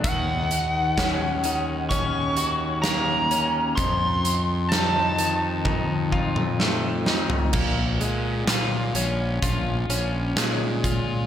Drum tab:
CC |----------------|----------------|x---------------|
HH |x-x-x-x-x-x-x-x-|x-x-x-x---------|--x-x-x-x-x-x-x-|
SD |----o-------o---|----o-------o-o-|----o-------o---|
T1 |----------------|--------o-------|----------------|
T2 |----------------|-----------o----|----------------|
FT |----------------|---------------o|----------------|
BD |o---o---o-------|o-------o-o-----|o-------o-----o-|